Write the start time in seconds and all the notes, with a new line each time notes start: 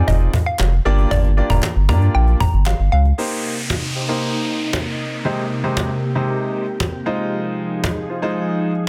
Already playing: C4 D#4 F4 G#4 D5
0.08 F1 D#5, cajon bass
0.21 cajon slap
0.34 cajon bass
0.46 F5, cajon slap
0.59 F1, cajon slap, clap
0.73 cajon slap
0.85 G1 A#3 D4 F4 G4 D5, cajon slap
0.98 cajon slap
1.11 G1 D5, cajon bass
1.24 cajon slap
1.37 A#3 D4 F4 G4 D5, cajon slap
1.50 F1 A#5, cajon bass
1.63 cajon slap, clap
1.76 G1, cajon slap
1.89 G2 A#3 D4 F4 G4 D5 A#5, cajon bass
2.02 cajon slap
2.15 A#1 G5, cajon slap
2.28 cajon slap
2.40 G1 A#5, cajon bass
2.54 G1, cajon slap
2.66 F5, cajon slap, clap
2.79 G1, cajon slap
2.92 C#2 F5
3.05 cajon slap
3.18 C3 A#3 D#4 G4 C5, downlifter
3.70 cajon slap
3.96 G4 C5
4.08 A#3 D#4 G4 C5
4.73 cajon slap
5.25 C3 G#3 D#4 G4 C5
5.64 C3 G#3 D#4 G4 C5
5.77 cajon slap
6.15 C3 G#3 D#4 G4 C5
6.80 cajon slap
7.06 F3 G#3 D#4 F4 G#4 C5
7.84 cajon slap
8.09 F4 C5
8.22 G#3 D#4 F4 C5